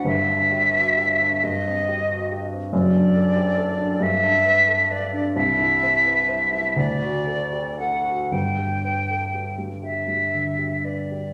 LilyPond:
<<
  \new Staff \with { instrumentName = "Flute" } { \time 6/8 \key g \major \tempo 4. = 44 e''4. ees''4 r8 | d''4. e''4 d''8 | e''4. d''4 fis''8 | g''4. e''4 d''8 | }
  \new Staff \with { instrumentName = "Grand piano" } { \time 6/8 \key g \major <g,, g,>16 d'16 g'16 fis'16 g'16 d'16 g,16 c'16 g'16 fis'16 g'16 c'16 | <fis,, fis,>16 d'16 a'16 g'16 a'16 d'16 g,16 d'16 b'16 a'16 b'16 d'16 | c,16 e'16 c''16 b'16 c''16 e'16 d,16 fis'16 a'16 g'16 a'16 fis'16 | <g,, g,>16 g'16 b'16 a'16 g'16 g16 g'16 g16 d16 g'16 b'16 g'16 | }
>>